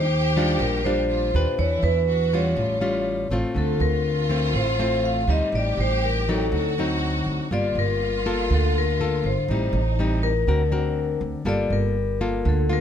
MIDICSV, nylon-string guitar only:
0, 0, Header, 1, 2, 480
1, 0, Start_track
1, 0, Key_signature, -2, "minor"
1, 0, Tempo, 493827
1, 1540, Time_signature, 4, 2, 24, 8
1, 12447, End_track
2, 0, Start_track
2, 0, Title_t, "Nylon-string guitar"
2, 0, Program_c, 0, 24
2, 0, Note_on_c, 0, 51, 57
2, 357, Note_on_c, 0, 55, 61
2, 361, Note_on_c, 0, 62, 60
2, 363, Note_on_c, 0, 65, 63
2, 557, Note_off_c, 0, 51, 0
2, 595, Note_on_c, 0, 46, 54
2, 790, Note_off_c, 0, 55, 0
2, 792, Note_off_c, 0, 65, 0
2, 793, Note_off_c, 0, 62, 0
2, 831, Note_on_c, 0, 55, 59
2, 838, Note_on_c, 0, 62, 63
2, 840, Note_on_c, 0, 65, 62
2, 1268, Note_off_c, 0, 55, 0
2, 1269, Note_off_c, 0, 62, 0
2, 1271, Note_off_c, 0, 65, 0
2, 1310, Note_on_c, 0, 62, 56
2, 1318, Note_on_c, 0, 67, 59
2, 1321, Note_on_c, 0, 71, 67
2, 1523, Note_off_c, 0, 46, 0
2, 1544, Note_on_c, 0, 52, 56
2, 2226, Note_off_c, 0, 62, 0
2, 2230, Note_off_c, 0, 67, 0
2, 2230, Note_off_c, 0, 71, 0
2, 2268, Note_on_c, 0, 55, 55
2, 2272, Note_on_c, 0, 61, 60
2, 2278, Note_on_c, 0, 65, 65
2, 2478, Note_off_c, 0, 52, 0
2, 2496, Note_on_c, 0, 45, 53
2, 2706, Note_off_c, 0, 55, 0
2, 2706, Note_off_c, 0, 61, 0
2, 2710, Note_off_c, 0, 65, 0
2, 2733, Note_on_c, 0, 55, 57
2, 2736, Note_on_c, 0, 61, 57
2, 2741, Note_on_c, 0, 65, 66
2, 3178, Note_off_c, 0, 55, 0
2, 3178, Note_off_c, 0, 61, 0
2, 3181, Note_off_c, 0, 65, 0
2, 3222, Note_on_c, 0, 57, 63
2, 3226, Note_on_c, 0, 60, 63
2, 3237, Note_on_c, 0, 65, 68
2, 3433, Note_off_c, 0, 45, 0
2, 3448, Note_on_c, 0, 50, 51
2, 4141, Note_off_c, 0, 57, 0
2, 4144, Note_off_c, 0, 60, 0
2, 4149, Note_off_c, 0, 65, 0
2, 4174, Note_on_c, 0, 57, 63
2, 4181, Note_on_c, 0, 65, 58
2, 4186, Note_on_c, 0, 60, 58
2, 4389, Note_off_c, 0, 50, 0
2, 4420, Note_on_c, 0, 45, 55
2, 4618, Note_off_c, 0, 57, 0
2, 4621, Note_off_c, 0, 65, 0
2, 4624, Note_off_c, 0, 60, 0
2, 4658, Note_on_c, 0, 57, 63
2, 4663, Note_on_c, 0, 60, 59
2, 4669, Note_on_c, 0, 65, 68
2, 5100, Note_off_c, 0, 57, 0
2, 5103, Note_off_c, 0, 60, 0
2, 5104, Note_off_c, 0, 65, 0
2, 5138, Note_on_c, 0, 55, 57
2, 5142, Note_on_c, 0, 60, 57
2, 5147, Note_on_c, 0, 63, 63
2, 5355, Note_off_c, 0, 45, 0
2, 5387, Note_on_c, 0, 45, 55
2, 6059, Note_off_c, 0, 55, 0
2, 6061, Note_off_c, 0, 60, 0
2, 6064, Note_off_c, 0, 63, 0
2, 6110, Note_on_c, 0, 54, 59
2, 6116, Note_on_c, 0, 60, 62
2, 6116, Note_on_c, 0, 63, 65
2, 6319, Note_off_c, 0, 45, 0
2, 6344, Note_on_c, 0, 50, 52
2, 6546, Note_off_c, 0, 54, 0
2, 6547, Note_off_c, 0, 60, 0
2, 6549, Note_off_c, 0, 63, 0
2, 6595, Note_on_c, 0, 54, 59
2, 6599, Note_on_c, 0, 60, 61
2, 6606, Note_on_c, 0, 63, 65
2, 7268, Note_off_c, 0, 54, 0
2, 7271, Note_off_c, 0, 60, 0
2, 7273, Note_off_c, 0, 63, 0
2, 7277, Note_off_c, 0, 50, 0
2, 7310, Note_on_c, 0, 58, 50
2, 7314, Note_on_c, 0, 65, 53
2, 7315, Note_on_c, 0, 55, 55
2, 7986, Note_off_c, 0, 65, 0
2, 7987, Note_off_c, 0, 58, 0
2, 8029, Note_on_c, 0, 58, 57
2, 8030, Note_on_c, 0, 65, 67
2, 8033, Note_on_c, 0, 69, 61
2, 8243, Note_off_c, 0, 55, 0
2, 8263, Note_on_c, 0, 50, 54
2, 8705, Note_off_c, 0, 65, 0
2, 8706, Note_off_c, 0, 58, 0
2, 8708, Note_off_c, 0, 69, 0
2, 8749, Note_on_c, 0, 58, 52
2, 8756, Note_on_c, 0, 69, 58
2, 8757, Note_on_c, 0, 65, 55
2, 9054, Note_off_c, 0, 58, 0
2, 9055, Note_off_c, 0, 65, 0
2, 9057, Note_off_c, 0, 69, 0
2, 9197, Note_off_c, 0, 50, 0
2, 9237, Note_on_c, 0, 45, 52
2, 9242, Note_on_c, 0, 60, 52
2, 9243, Note_on_c, 0, 55, 58
2, 9247, Note_on_c, 0, 63, 62
2, 9539, Note_off_c, 0, 55, 0
2, 9540, Note_off_c, 0, 60, 0
2, 9542, Note_off_c, 0, 63, 0
2, 9712, Note_on_c, 0, 55, 50
2, 9720, Note_on_c, 0, 60, 48
2, 9724, Note_on_c, 0, 63, 60
2, 10029, Note_off_c, 0, 55, 0
2, 10031, Note_off_c, 0, 60, 0
2, 10034, Note_off_c, 0, 63, 0
2, 10165, Note_off_c, 0, 45, 0
2, 10185, Note_on_c, 0, 50, 51
2, 10187, Note_on_c, 0, 60, 55
2, 10191, Note_on_c, 0, 70, 61
2, 10192, Note_on_c, 0, 66, 53
2, 10323, Note_off_c, 0, 60, 0
2, 10324, Note_off_c, 0, 66, 0
2, 10326, Note_off_c, 0, 70, 0
2, 10417, Note_on_c, 0, 60, 58
2, 10423, Note_on_c, 0, 70, 61
2, 10424, Note_on_c, 0, 66, 54
2, 11101, Note_off_c, 0, 60, 0
2, 11102, Note_off_c, 0, 70, 0
2, 11104, Note_off_c, 0, 66, 0
2, 11120, Note_off_c, 0, 50, 0
2, 11135, Note_on_c, 0, 55, 55
2, 11138, Note_on_c, 0, 58, 57
2, 11141, Note_on_c, 0, 65, 52
2, 11146, Note_on_c, 0, 69, 63
2, 11616, Note_off_c, 0, 58, 0
2, 11618, Note_off_c, 0, 65, 0
2, 11620, Note_off_c, 0, 69, 0
2, 11867, Note_on_c, 0, 58, 60
2, 11868, Note_on_c, 0, 65, 56
2, 11872, Note_on_c, 0, 69, 64
2, 12074, Note_off_c, 0, 55, 0
2, 12104, Note_on_c, 0, 50, 57
2, 12306, Note_off_c, 0, 58, 0
2, 12306, Note_off_c, 0, 65, 0
2, 12308, Note_off_c, 0, 69, 0
2, 12339, Note_on_c, 0, 65, 64
2, 12344, Note_on_c, 0, 58, 59
2, 12447, Note_off_c, 0, 50, 0
2, 12447, Note_off_c, 0, 58, 0
2, 12447, Note_off_c, 0, 65, 0
2, 12447, End_track
0, 0, End_of_file